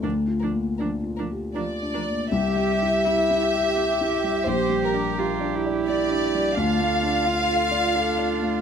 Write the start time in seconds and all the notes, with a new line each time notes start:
0.03 D2 F3 D4 A#4
0.28 F4
0.40 F3 D4 A#4
0.52 A#3
0.78 F3 D4 A#4
1.03 F4
1.16 F3 D4 A#4
1.32 G4
1.55 F3 D4 F4 A#4 D5
1.82 D4
1.94 F3 D4 A#4
2.08 A#3
2.31 C2 G4 E5
2.55 G3
2.82 E4
3.06 E4 G4
3.31 E4
3.43 G4
3.55 E5
3.77 G4
4.01 E4
4.24 G3
4.46 A#1 G4 C5
4.70 G3
4.82 A#4
4.94 D4
5.18 F4 G4
5.40 D4
5.54 E4
5.66 D5
5.86 G4 D5
6.10 D4
6.35 G3
6.55 D2 D4 F4 F5
6.81 A3
7.03 D4
7.26 F4
7.51 A4
7.72 D5
7.95 D4 A4
8.19 D4
8.42 A3